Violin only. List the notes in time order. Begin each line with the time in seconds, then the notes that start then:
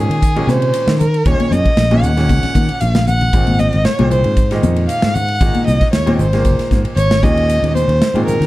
Already playing: G#4
0.48 C5
1.01 A#4
1.27 C#5
1.52 D#5
2.03 F#5
2.81 F5
3.07 F#5
3.59 D#5
3.85 C#5
4.11 C5
4.88 F5
5.14 F#5
5.67 D#5
5.93 C#5
6.21 C5
6.96 C#5
7.23 D#5
7.75 C5
8.27 A#4